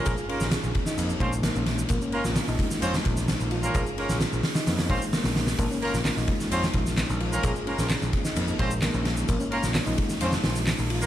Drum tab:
RD |x-x-x-x-x-x-x-x-|x-x---x-x-x-x-x-|x-x-x-----x-----|x-x---x-x-x-x-x-|
HH |----------------|----o-----------|------oooo--oooo|----o-----------|
SH |xx-xxx-xxx-xxx-x|xx-xxx-xxx-xxx-x|xx-xxx-xxx-xxx-x|xx-xxx-xxx-xxx-x|
CP |----------------|----------------|----------------|----x-------x---|
SD |---oo--o----o-o-|---oo--o-o-oo---|---oo-oooo--oooo|---oo--o-o-oo---|
BD |o-----o---o-----|o-----o---o-----|o---------o-----|o-----o---o-----|

RD |x-x-x-x-x-x-x-x-|x-x---x-x-----x-|
HH |----------------|----o-----o-o---|
SH |xx-xxx-xxx-xxx-x|xx-xxx-xxx-xxx-x|
CP |----x-------x---|----x-------x---|
SD |---oo--o----o-o-|---oo--o-oooo---|
BD |o-----o---o-----|o-----o---------|